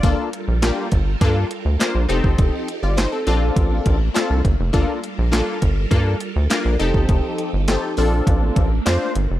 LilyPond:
<<
  \new Staff \with { instrumentName = "Analog polysynth" } { \time 4/4 \key g \minor \tempo 4 = 102 << { d''16 r2. r8. | r8. <f' d''>16 <ees' c''>16 <c' a'>8 r2 r16 | r1 | r1 | } \\ { <bes d' f' a'>8 r8 <bes d' f' g'>8 r8 <bes d' f' a'>8 r8 <bes d' f' c''>8 <c' ees' g' a'>8~ | <c' ees' g' a'>8 r4 <c' d' f' a'>4 r8 <c' d' f' a'>8 r8 | <bes d' f' a'>8 r8 <bes d' f' a'>8 r8 <bes d' f' a'>8 r8 <bes d' f' bes'>8 <c' ees' g' a'>8~ | <c' ees' g' a'>8 r8 <c' ees' g' a'>8 <c' d' f' a'>4 r8 <c' d' f' c''>8 r8 | } >> }
  \new Staff \with { instrumentName = "String machine" } { \time 4/4 \key g \minor <g f' a' bes'>2.~ <g f' a' bes'>8 <f ees' g' a'>8~ | <f ees' g' a'>4. <a bes d'>2~ <a bes d'>8 | <g f' a' bes'>2.~ <g f' a' bes'>8 <f ees' g'>8~ | <f ees' g'>4. <a bes d'>2~ <a bes d'>8 | }
  \new Staff \with { instrumentName = "Analog synth bass" } { \clef bass \time 4/4 \key g \minor g,,16 r8 bes,,8 r16 g,,8 g,8 r16 d,16 r16 bes,,16 f,,16 g,,16 | f,,16 r8 g,,8 r16 bes,,8 a,,8 a,,8 r16 c,16 g,,16 f,,16 | g,,16 r8 bes,,8 r16 g,,8 g,8 r16 d,16 r16 bes,,16 f,,16 g,,16 | f,,16 r8 g,,8 r16 bes,,8 a,,8 a,,8 f,16 r16 g,,16 f,,16 | }
  \new DrumStaff \with { instrumentName = "Drums" } \drummode { \time 4/4 <hh bd>8 hh8 <hc hh sn>8 <hh bd>8 <hh bd>8 hh8 <hc hh sn>8 hh16 bd16 | <hh bd>8 hh8 <hc hh sn>8 hh8 <hh bd>8 <hh bd>8 <hc hh sn>8 <hh bd>8 | <hh bd>8 hh8 <hc hh sn>8 <hh bd>8 <hh bd>8 hh8 <hc hh sn>8 hh16 bd16 | <hh bd>8 hh8 <hc hh sn>8 hho8 <hh bd>8 <hh bd>8 <hc hh sn>8 hh8 | }
>>